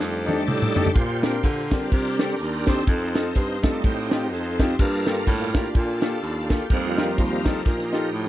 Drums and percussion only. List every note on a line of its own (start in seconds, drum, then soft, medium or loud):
0.00 snare medium
0.28 high tom medium
0.48 mid tom medium
0.62 mid tom medium
0.76 floor tom medium
0.86 floor tom medium
0.96 kick loud
0.96 closed hi-hat medium
1.23 snare loud
1.23 closed hi-hat medium
1.43 kick medium
1.43 closed hi-hat medium
1.71 kick medium
1.71 snare loud
1.71 closed hi-hat medium
1.91 kick loud
1.91 closed hi-hat medium
2.19 snare loud
2.19 closed hi-hat medium
2.40 closed hi-hat medium
2.67 kick medium
2.67 snare loud
2.67 closed hi-hat medium
2.87 kick loud
2.87 closed hi-hat medium
3.15 snare loud
3.15 closed hi-hat medium
3.35 kick medium
3.35 closed hi-hat medium
3.63 kick medium
3.63 snare loud
3.63 closed hi-hat medium
3.84 kick loud
3.84 closed hi-hat medium
4.11 snare loud
4.11 closed hi-hat medium
4.32 closed hi-hat medium
4.59 kick medium
4.59 snare loud
4.59 closed hi-hat medium
4.79 kick loud
4.79 closed hi-hat medium
5.07 snare loud
5.07 closed hi-hat medium
5.26 kick medium
5.26 closed hi-hat medium
5.54 kick medium
5.54 snare loud
5.54 closed hi-hat medium
5.75 kick loud
5.75 closed hi-hat medium
6.02 snare loud
6.02 closed hi-hat medium
6.23 closed hi-hat medium
6.50 kick medium
6.50 snare loud
6.50 closed hi-hat medium
6.70 kick loud
6.70 closed hi-hat medium
6.98 snare loud
6.98 closed hi-hat medium
7.18 kick medium
7.18 closed hi-hat medium
7.45 kick medium
7.45 snare loud
7.45 closed hi-hat medium
7.66 kick loud
7.66 snare medium
7.79 snare soft
7.93 snare medium